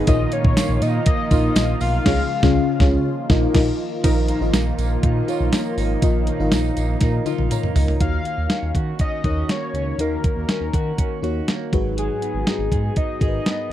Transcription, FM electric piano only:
0.07 A#2 D#4 F4 A#4 C#5
0.15 D#5
1.32 D#4 F4 A#4 F5
2.06 C#3 C#4 F4 G#4 C#5
2.43 C#3 C#4 F4 G#4 C#5
2.80 C#3 C#4 F4 G#4 C#5
3.30 D#4 F4 A#4 D#5
3.55 D#4 F4 A#4 D#5
4.04 A#2 D#4 F4 A#4 D#5
4.41 D#4 F4 A#4 D#5
5.28 D#4 F4 A#4 C#5
6.03 A#2 D#4 F4 A#4 D#5
6.40 D#4 F4 A#4 F5
7.26 D#4 F4 A#4 D#5
7.51 C#5 A#5
7.76 D#5
8.01 D#3 D#4 F#4 A#4 C#5
9.24 D#4 F#4 A#4 C#5
9.99 D#3 D#4 F#4 A#4 D#5
11.22 D#4 F#4 A#4 C#5
11.73 G#2 D#4 F#4 G#4 B4
13.21 D#4 F#4 G#4 A#4
13.28 B4

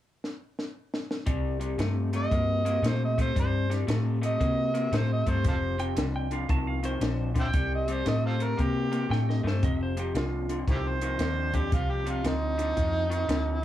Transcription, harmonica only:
2.17 D#5
2.87 C5
3.05 D#5
3.21 C5
3.40 C5
4.25 D#5
4.96 C5
5.13 D#5
5.30 C5
5.48 F4 A4 C5
7.40 C5 E5 G5
7.75 D#5
7.93 C5
8.08 D#5
8.26 F4 A4 C5
8.43 A#4
8.61 G4
10.71 C4 E4 G4
10.88 C5
11.56 G4
11.74 F4
11.91 G4
12.10 F4
12.27 D#4

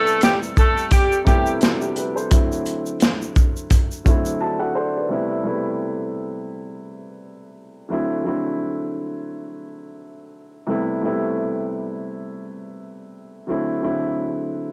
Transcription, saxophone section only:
Already playing: A3 A4
0.23 G3 G4
0.59 A3 A4
0.92 G3 G4
1.26 G3 G4

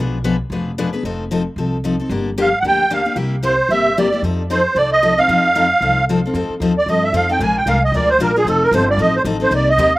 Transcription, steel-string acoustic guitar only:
0.00 B2 F3 B3 D4 G#4 B4
0.24 B2 F3 B3 D4 G#4 B4
0.52 B2 F3 B3 D4 G#4 B4
0.78 B2 F3 B3 D4 G#4 B4
0.93 B3 D4 G#4 B4
1.05 F3 C4 D#4 A4
1.31 F3 C4 D#4 A4
1.58 F3 C4 D#4 A4
1.84 F3 C4 D#4 A4
2.00 C4 D#4 A4
2.10 D3 F3 A#3 D4 G4
2.38 D3 F3 A#3 D4 G4
2.64 D3 F3 A#3 D4 G4
2.90 D3 F3 A#3 D4 G4
3.05 A#3 D4 G4
3.16 C3 G3 A#3 E4 G4
3.43 C3 G3 A#3 E4 G4
3.71 C3 G3 A#3 E4 G4
3.98 C3 G3 A#3 E4 G4
4.12 A#3 E4 G4
4.24 F3 C4 D#4 A4
4.50 F3 C4 D#4 A4
4.76 F3 C4 D#4 A4
5.03 F3 C4 D#4 A4
5.18 C4 D#4 A4
5.29 F3 C4 D#4 A4
5.55 F3 C4 D#4 A4
5.82 F3 C4 D#4 A4
6.09 F3 C4 D#4 A4
6.25 C4 D#4 A4
6.35 F3 C4 D#4 A4
6.62 F3 C4 D#4 A4
6.88 F3 C4 D#4 A4
7.14 F3 C4 D#4 A4
7.29 C4 D#4 A4
7.40 F3 G#3 D4 F4 A#4
7.67 F3 G#3 D4 F4 A#4
7.94 F3 G#3 D4 F4 A#4
8.20 F3 G#3 D4 F4 A#4
8.36 D4 F4 A#4
8.47 F3 C4 D#4 A4
8.73 F3 C4 D#4 A4
8.99 F3 C4 D#4 A4
9.25 F3 C4 D#4 A4
9.40 C4 D#4 A4
9.51 C3 G3 A#3 D#4 G4
9.78 C3 G3 A#3 D#4 G4

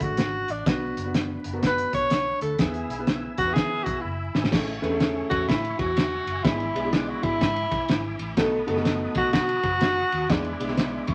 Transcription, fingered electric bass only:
0.01 D2
0.09 A1
0.18 G#1
0.49 A1
0.97 F#1
1.45 F#1
1.94 B1
2.41 D2
2.59 E2
2.90 B1
3.39 E2
3.56 E3
3.87 B1
4.04 F#1
4.34 G#1
4.53 A1
4.82 E2
5.31 E2
5.49 A2
5.79 E2
6.26 F#1
6.45 G#1
6.74 B1
7.24 G#1
7.41 G#2
7.72 B1
7.90 G#1
8.19 A1
8.68 F#1
9.16 B1
9.34 B2
9.64 F#1
10.12 D#2
10.30 E2
10.61 B1
11.08 E2

